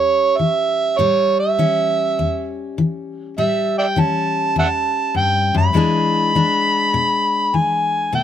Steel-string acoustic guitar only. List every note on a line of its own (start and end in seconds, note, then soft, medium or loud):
0.00 0.34 E2 medium
0.00 0.99 G3 medium
0.00 1.02 C#4 medium
0.00 1.02 G4 medium
0.39 0.94 E3 medium
0.99 1.54 A2 medium
0.99 3.37 G3 medium
1.59 2.14 E3 medium
1.59 3.35 C#4 medium
2.19 2.74 E2 medium
2.78 3.34 E3 medium
3.38 3.93 A2 medium
3.38 5.74 G3 medium
3.96 4.52 E3 medium
3.96 5.74 C#4 medium
4.56 5.12 E2 medium
5.15 5.54 G2 medium
5.55 5.73 F#2 medium
5.73 6.30 E2 medium
5.73 6.34 E3 medium
5.73 8.11 G#3 medium
5.73 6.35 D4 medium
5.77 8.12 G#4 medium
6.35 6.91 E3 medium
6.35 8.12 D4 medium
6.94 7.50 B2 medium
7.54 8.10 E3 medium
8.13 8.23 B2 medium
8.13 8.23 A3 medium